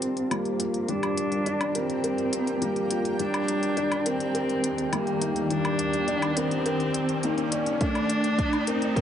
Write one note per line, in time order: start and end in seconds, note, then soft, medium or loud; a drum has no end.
0.00 0.31 G3 medium
0.00 3.20 G3 medium
0.00 0.33 C4 loud
0.00 1.46 D4 medium
0.00 5.04 F4 medium
0.00 1.75 A#4 medium
0.00 7.81 A#4 medium
0.00 0.42 C5 medium
0.00 closed hi-hat medium
0.00 riser medium
0.17 closed hi-hat soft
0.27 8.86 G5 medium
0.31 0.58 G3 medium
0.31 0.91 A#3 medium
0.31 closed hi-hat soft
0.31 low woodblock medium
0.45 closed hi-hat soft
0.59 0.87 F4 medium
0.59 closed hi-hat medium
0.74 closed hi-hat soft
0.88 1.16 G3 medium
0.88 1.78 D4 loud
0.88 closed hi-hat soft
1.03 closed hi-hat soft
1.03 low woodblock medium
1.17 closed hi-hat medium
1.32 closed hi-hat soft
1.46 1.74 D4 medium
1.46 closed hi-hat soft
1.61 closed hi-hat soft
1.61 low woodblock medium
1.75 2.64 C4 loud
1.75 2.02 A#4 medium
1.75 closed hi-hat medium
1.90 closed hi-hat soft
2.04 2.31 A#4 medium
2.04 closed hi-hat soft
2.18 closed hi-hat soft
2.33 closed hi-hat medium
2.47 closed hi-hat soft
2.61 2.89 G3 medium
2.61 3.20 A#3 medium
2.61 closed hi-hat soft
2.76 closed hi-hat soft
2.90 3.18 F4 medium
2.90 closed hi-hat medium
3.05 closed hi-hat soft
3.19 7.81 D#3 medium
3.19 3.47 G3 medium
3.19 4.08 D4 loud
3.19 closed hi-hat soft
3.34 9.01 D5 medium
3.34 closed hi-hat soft
3.34 low woodblock medium
3.48 closed hi-hat medium
3.63 closed hi-hat soft
3.77 4.05 D4 medium
3.77 closed hi-hat soft
3.92 closed hi-hat soft
3.92 low woodblock medium
4.06 4.95 C4 loud
4.06 4.33 A#4 medium
4.06 closed hi-hat medium
4.20 closed hi-hat soft
4.35 4.62 A#4 medium
4.35 closed hi-hat soft
4.49 closed hi-hat soft
4.64 closed hi-hat medium
4.78 closed hi-hat soft
4.93 5.20 G3 medium
4.93 5.52 A#3 medium
4.93 closed hi-hat soft
4.93 low woodblock medium
5.07 closed hi-hat soft
5.22 5.49 D#4 medium
5.22 closed hi-hat medium
5.36 closed hi-hat soft
5.50 5.78 G3 medium
5.50 6.38 D4 loud
5.50 closed hi-hat soft
5.65 closed hi-hat soft
5.65 low woodblock medium
5.79 closed hi-hat medium
5.93 closed hi-hat soft
6.08 6.36 D4 medium
6.08 closed hi-hat soft
6.22 closed hi-hat soft
6.22 low woodblock medium
6.36 7.25 C4 loud
6.36 6.64 A#4 medium
6.36 closed hi-hat medium
6.51 closed hi-hat soft
6.66 6.93 A#4 medium
6.66 closed hi-hat soft
6.80 closed hi-hat soft
6.94 closed hi-hat medium
7.09 closed hi-hat soft
7.23 7.80 A#3 medium
7.23 7.51 D#4 medium
7.23 closed hi-hat soft
7.38 closed hi-hat soft
7.52 7.80 D5 medium
7.52 closed hi-hat medium
7.66 closed hi-hat soft
7.81 8.09 A3 medium
7.81 8.69 D4 loud
7.81 kick loud
7.81 closed hi-hat soft
7.95 closed hi-hat soft
7.95 low woodblock medium
8.10 closed hi-hat medium
8.24 closed hi-hat soft
8.32 9.01 F4 medium
8.39 8.66 D4 medium
8.39 kick loud
8.39 closed hi-hat soft
8.53 closed hi-hat soft
8.53 low woodblock medium
8.67 9.01 C4 loud
8.67 8.95 A#4 medium
8.67 closed hi-hat medium
8.82 closed hi-hat soft
8.96 9.01 A#4 medium
8.96 kick medium
8.96 closed hi-hat soft